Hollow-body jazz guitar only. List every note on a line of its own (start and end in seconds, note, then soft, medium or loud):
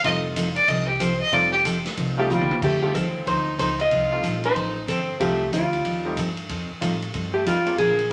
2.19 2.31 G4 loud
2.31 2.63 F4 medium
2.64 2.81 G4 medium
2.83 2.94 G4 medium
2.94 3.28 A4 medium
3.28 3.58 C5 loud
3.59 3.80 C5 medium
3.81 4.45 D#5 loud
4.46 4.86 C5 medium
4.89 5.20 A4 medium
5.21 5.53 G4 medium
5.54 6.14 F4 medium
7.34 7.46 G4 medium
7.48 7.78 F4 medium
7.78 8.12 G#4 loud